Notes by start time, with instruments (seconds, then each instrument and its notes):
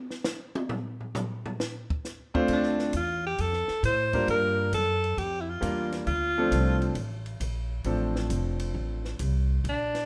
0.10 snare
0.24 snare, hi-hat pedal
0.55 high tom
0.69 floor tom
1.01 floor tom
1.15 floor tom, hi-hat pedal
1.46 floor tom
1.60 snare
1.90 kick
2.05 snare, hi-hat pedal
2.34 grand piano A3 C4 D4 F4 C5, kick
2.48 upright bass D2, kick, crash
2.53 alto saxophone D4
2.63 snare
2.79 snare
2.93 upright bass E2, alto saxophone F4, kick, hi-hat pedal, ride
3.27 alto saxophone G4
3.38 upright bass F2, alto saxophone A4, kick, ride
3.53 snare
3.68 muted upright bass stroke, snare
3.83 upright bass A2, alto saxophone C5, kick, hi-hat pedal, ride
4.13 grand piano G3 A#3 D4 F4 A#4, kick, ride
4.28 upright bass G2, alto saxophone A#4, kick, ride
4.73 upright bass F#2, alto saxophone A4, kick, hi-hat pedal, ride
5.04 ride
5.18 upright bass F2, alto saxophone G4, kick, ride
5.41 alto saxophone E4
5.50 alto saxophone F4
5.61 upright bass E2, grand piano G3 A#3 D4 F4 A#4, kick, hi-hat pedal, ride
5.92 snare, ride
6.07 upright bass D2, alto saxophone F4, kick, ride
6.38 grand piano F3 A3 C4 D4 A4
6.51 upright bass C2, kick, hi-hat pedal, ride
6.82 ride
6.95 upright bass A1, kick, ride
7.26 ride
7.40 upright bass A#1, kick, hi-hat pedal, ride
7.84 upright bass A1, grand piano F3 A3 C4 D4 A4, kick, ride
8.16 snare
8.30 upright bass F1, kick, hi-hat pedal, ride
8.60 ride
8.74 upright bass A1, kick
9.05 snare
9.19 upright bass C2, kick, hi-hat pedal, ride
9.64 upright bass A#1, kick, ride
9.69 alto saxophone D4
9.95 snare, ride